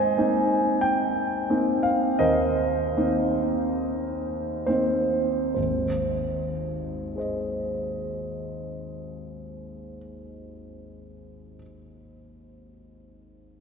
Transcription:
0, 0, Header, 1, 2, 480
1, 0, Start_track
1, 0, Key_signature, -4, "major"
1, 0, Tempo, 1357466
1, 781, Tempo, 1574803
1, 1261, Tempo, 1780415
1, 1741, Time_signature, 4, 2, 24, 8
1, 1741, Tempo, 1608579
1, 2701, Tempo, 1675978
1, 3661, Tempo, 1630435
1, 4094, End_track
2, 0, Start_track
2, 0, Title_t, "Grand piano"
2, 0, Program_c, 0, 0
2, 0, Control_c, 0, 64, 127
2, 0, Note_on_c, 0, 44, 36
2, 0, Note_on_c, 0, 72, 54
2, 0, Note_on_c, 0, 75, 54
2, 0, Note_on_c, 0, 80, 70
2, 53, Note_off_c, 0, 44, 0
2, 63, Note_on_c, 0, 58, 27
2, 64, Note_on_c, 0, 60, 29
2, 65, Note_on_c, 0, 63, 30
2, 277, Note_off_c, 0, 75, 0
2, 278, Note_off_c, 0, 72, 0
2, 287, Note_on_c, 0, 79, 62
2, 290, Note_off_c, 0, 80, 0
2, 517, Note_off_c, 0, 58, 0
2, 518, Note_off_c, 0, 60, 0
2, 518, Note_off_c, 0, 63, 0
2, 530, Note_on_c, 0, 58, 31
2, 531, Note_on_c, 0, 60, 33
2, 533, Note_on_c, 0, 63, 32
2, 646, Note_on_c, 0, 77, 58
2, 651, Note_off_c, 0, 79, 0
2, 767, Note_off_c, 0, 58, 0
2, 768, Note_off_c, 0, 60, 0
2, 769, Note_off_c, 0, 63, 0
2, 774, Note_on_c, 0, 75, 60
2, 776, Note_on_c, 0, 70, 41
2, 777, Note_on_c, 0, 39, 34
2, 778, Note_off_c, 0, 77, 0
2, 778, Note_on_c, 0, 72, 47
2, 1005, Note_off_c, 0, 39, 0
2, 1013, Note_on_c, 0, 58, 30
2, 1014, Note_on_c, 0, 60, 29
2, 1015, Note_on_c, 0, 63, 35
2, 1490, Note_off_c, 0, 70, 0
2, 1490, Note_off_c, 0, 72, 0
2, 1492, Note_off_c, 0, 58, 0
2, 1492, Note_off_c, 0, 60, 0
2, 1493, Note_off_c, 0, 63, 0
2, 1499, Note_on_c, 0, 72, 41
2, 1500, Note_off_c, 0, 75, 0
2, 1502, Note_on_c, 0, 58, 23
2, 1503, Note_on_c, 0, 60, 22
2, 1505, Note_on_c, 0, 63, 24
2, 1729, Note_off_c, 0, 58, 0
2, 1730, Note_off_c, 0, 60, 0
2, 1731, Note_off_c, 0, 63, 0
2, 1732, Note_off_c, 0, 72, 0
2, 1736, Note_on_c, 0, 72, 36
2, 1740, Note_on_c, 0, 39, 25
2, 1741, Note_on_c, 0, 32, 27
2, 1748, Control_c, 0, 64, 0
2, 1829, Control_c, 0, 64, 127
2, 2216, Note_on_c, 0, 68, 21
2, 2218, Note_off_c, 0, 72, 0
2, 2222, Note_on_c, 0, 72, 21
2, 2228, Note_on_c, 0, 75, 20
2, 3040, Note_off_c, 0, 32, 0
2, 3040, Note_off_c, 0, 39, 0
2, 3497, Note_off_c, 0, 68, 0
2, 3503, Note_off_c, 0, 72, 0
2, 3508, Note_off_c, 0, 75, 0
2, 4094, End_track
0, 0, End_of_file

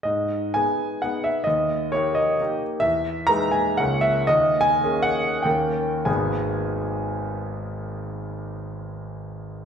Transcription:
0, 0, Header, 1, 2, 480
1, 0, Start_track
1, 0, Key_signature, 5, "minor"
1, 0, Tempo, 493016
1, 49, Time_signature, 3, 2, 24, 8
1, 1010, Tempo, 451128
1, 3410, Tempo, 495050
1, 4370, Tempo, 551978
1, 4850, Tempo, 617920
1, 6770, Tempo, 599401
1, 8646, End_track
2, 0, Start_track
2, 0, Title_t, "Grand piano"
2, 0, Program_c, 0, 0
2, 32, Note_on_c, 0, 75, 66
2, 49, Note_on_c, 0, 44, 46
2, 253, Control_c, 0, 64, 127
2, 522, Note_off_c, 0, 44, 0
2, 525, Note_on_c, 0, 80, 75
2, 527, Note_off_c, 0, 75, 0
2, 542, Control_c, 0, 64, 0
2, 542, Note_on_c, 0, 59, 35
2, 549, Note_on_c, 0, 63, 32
2, 550, Note_on_c, 0, 68, 38
2, 974, Note_off_c, 0, 59, 0
2, 977, Note_off_c, 0, 63, 0
2, 978, Note_off_c, 0, 68, 0
2, 991, Note_on_c, 0, 78, 68
2, 1005, Note_off_c, 0, 80, 0
2, 1012, Note_on_c, 0, 59, 31
2, 1017, Note_on_c, 0, 63, 33
2, 1020, Note_on_c, 0, 68, 32
2, 1224, Note_on_c, 0, 76, 69
2, 1241, Note_off_c, 0, 78, 0
2, 1436, Note_on_c, 0, 75, 73
2, 1440, Note_off_c, 0, 59, 0
2, 1443, Note_off_c, 0, 63, 0
2, 1444, Note_off_c, 0, 68, 0
2, 1468, Note_off_c, 0, 76, 0
2, 1471, Note_on_c, 0, 39, 50
2, 1681, Control_c, 0, 64, 127
2, 1944, Note_off_c, 0, 75, 0
2, 1947, Note_off_c, 0, 39, 0
2, 1947, Note_on_c, 0, 73, 73
2, 1969, Note_on_c, 0, 58, 39
2, 1976, Note_on_c, 0, 63, 40
2, 1976, Note_on_c, 0, 67, 42
2, 2191, Note_on_c, 0, 75, 71
2, 2209, Note_off_c, 0, 73, 0
2, 2417, Note_off_c, 0, 58, 0
2, 2420, Note_off_c, 0, 63, 0
2, 2420, Note_off_c, 0, 67, 0
2, 2464, Control_c, 0, 64, 0
2, 2465, Note_on_c, 0, 58, 38
2, 2471, Note_on_c, 0, 63, 37
2, 2471, Note_on_c, 0, 67, 38
2, 2678, Note_off_c, 0, 75, 0
2, 2883, Note_off_c, 0, 58, 0
2, 2885, Note_on_c, 0, 76, 86
2, 2886, Note_off_c, 0, 63, 0
2, 2886, Note_off_c, 0, 67, 0
2, 2905, Note_on_c, 0, 40, 51
2, 3122, Control_c, 0, 64, 127
2, 3381, Note_on_c, 0, 82, 101
2, 3387, Note_off_c, 0, 40, 0
2, 3391, Note_off_c, 0, 76, 0
2, 3406, Note_on_c, 0, 56, 45
2, 3408, Note_on_c, 0, 63, 43
2, 3408, Note_on_c, 0, 71, 43
2, 3626, Note_on_c, 0, 80, 71
2, 3640, Note_off_c, 0, 82, 0
2, 3851, Note_off_c, 0, 56, 0
2, 3852, Note_off_c, 0, 63, 0
2, 3852, Note_off_c, 0, 71, 0
2, 3877, Note_on_c, 0, 78, 77
2, 3878, Note_off_c, 0, 80, 0
2, 3898, Note_on_c, 0, 58, 44
2, 3901, Note_on_c, 0, 37, 54
2, 3902, Note_on_c, 0, 61, 41
2, 3904, Control_c, 0, 64, 0
2, 3908, Note_on_c, 0, 70, 41
2, 4076, Control_c, 0, 64, 127
2, 4106, Note_on_c, 0, 76, 82
2, 4121, Note_off_c, 0, 78, 0
2, 4334, Note_off_c, 0, 58, 0
2, 4336, Note_off_c, 0, 61, 0
2, 4339, Note_off_c, 0, 70, 0
2, 4358, Note_off_c, 0, 76, 0
2, 4359, Note_on_c, 0, 75, 90
2, 4360, Note_off_c, 0, 37, 0
2, 4377, Note_on_c, 0, 39, 56
2, 4378, Control_c, 0, 64, 0
2, 4573, Control_c, 0, 64, 127
2, 4651, Note_on_c, 0, 80, 92
2, 4675, Note_off_c, 0, 75, 0
2, 4839, Note_off_c, 0, 39, 0
2, 4850, Note_on_c, 0, 58, 43
2, 4853, Note_on_c, 0, 61, 44
2, 4857, Note_on_c, 0, 68, 51
2, 4994, Note_off_c, 0, 80, 0
2, 4998, Note_on_c, 0, 78, 88
2, 5295, Note_off_c, 0, 58, 0
2, 5297, Note_off_c, 0, 61, 0
2, 5299, Note_off_c, 0, 68, 0
2, 5308, Note_on_c, 0, 79, 67
2, 5322, Note_off_c, 0, 78, 0
2, 5330, Note_on_c, 0, 58, 39
2, 5331, Note_on_c, 0, 39, 54
2, 5334, Note_on_c, 0, 61, 40
2, 5338, Control_c, 0, 64, 0
2, 5340, Note_on_c, 0, 70, 38
2, 5505, Control_c, 0, 64, 127
2, 5785, Note_off_c, 0, 58, 0
2, 5787, Note_off_c, 0, 61, 0
2, 5790, Note_off_c, 0, 39, 0
2, 5790, Note_off_c, 0, 70, 0
2, 5796, Note_on_c, 0, 80, 68
2, 5801, Note_on_c, 0, 39, 45
2, 5803, Note_on_c, 0, 32, 58
2, 5803, Note_on_c, 0, 56, 43
2, 5805, Note_off_c, 0, 79, 0
2, 5809, Note_on_c, 0, 63, 50
2, 5811, Note_on_c, 0, 59, 45
2, 5813, Note_on_c, 0, 68, 45
2, 5826, Control_c, 0, 64, 0
2, 5990, Control_c, 0, 64, 127
2, 8646, Note_off_c, 0, 32, 0
2, 8646, Note_off_c, 0, 39, 0
2, 8646, Note_off_c, 0, 56, 0
2, 8646, Note_off_c, 0, 59, 0
2, 8646, Note_off_c, 0, 63, 0
2, 8646, Note_off_c, 0, 68, 0
2, 8646, Note_off_c, 0, 80, 0
2, 8646, End_track
0, 0, End_of_file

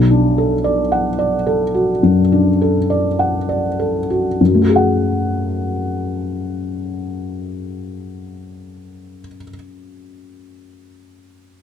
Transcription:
0, 0, Header, 1, 2, 480
1, 0, Start_track
1, 0, Key_signature, 3, "minor"
1, 0, Tempo, 1098901
1, 881, Tempo, 1165049
1, 1361, Tempo, 1217039
1, 1839, Time_signature, 4, 2, 24, 8
1, 4690, End_track
2, 0, Start_track
2, 0, Title_t, "Felt piano"
2, 0, Program_c, 0, 0
2, 0, Control_c, 0, 64, 127
2, 0, Note_on_c, 0, 35, 44
2, 46, Note_on_c, 0, 62, 32
2, 166, Note_on_c, 0, 69, 31
2, 232, Note_off_c, 0, 62, 0
2, 281, Note_on_c, 0, 74, 35
2, 351, Note_off_c, 0, 69, 0
2, 401, Note_on_c, 0, 78, 33
2, 469, Note_off_c, 0, 74, 0
2, 518, Note_on_c, 0, 74, 33
2, 590, Note_off_c, 0, 78, 0
2, 640, Note_on_c, 0, 69, 31
2, 710, Note_off_c, 0, 74, 0
2, 762, Note_on_c, 0, 66, 28
2, 834, Note_off_c, 0, 69, 0
2, 867, Note_off_c, 0, 35, 0
2, 886, Note_on_c, 0, 42, 28
2, 954, Note_off_c, 0, 66, 0
2, 1006, Note_on_c, 0, 62, 27
2, 1073, Note_off_c, 0, 42, 0
2, 1128, Note_on_c, 0, 69, 27
2, 1194, Note_off_c, 0, 62, 0
2, 1245, Note_on_c, 0, 74, 28
2, 1316, Note_off_c, 0, 69, 0
2, 1365, Note_on_c, 0, 78, 29
2, 1434, Note_off_c, 0, 74, 0
2, 1482, Note_on_c, 0, 74, 24
2, 1552, Note_off_c, 0, 78, 0
2, 1602, Note_on_c, 0, 69, 23
2, 1673, Note_off_c, 0, 74, 0
2, 1724, Note_on_c, 0, 66, 23
2, 1793, Note_off_c, 0, 69, 0
2, 1841, Note_off_c, 0, 66, 0
2, 1844, Note_on_c, 0, 42, 29
2, 1847, Control_c, 0, 64, 0
2, 1872, Note_on_c, 0, 54, 31
2, 1899, Note_on_c, 0, 57, 26
2, 1927, Control_c, 0, 64, 127
2, 1928, Note_on_c, 0, 66, 27
2, 1955, Note_on_c, 0, 68, 32
2, 1982, Note_on_c, 0, 78, 29
2, 3737, Note_off_c, 0, 42, 0
2, 3764, Note_off_c, 0, 54, 0
2, 3791, Note_off_c, 0, 57, 0
2, 3820, Note_off_c, 0, 66, 0
2, 3847, Note_off_c, 0, 68, 0
2, 3874, Note_off_c, 0, 78, 0
2, 4690, End_track
0, 0, End_of_file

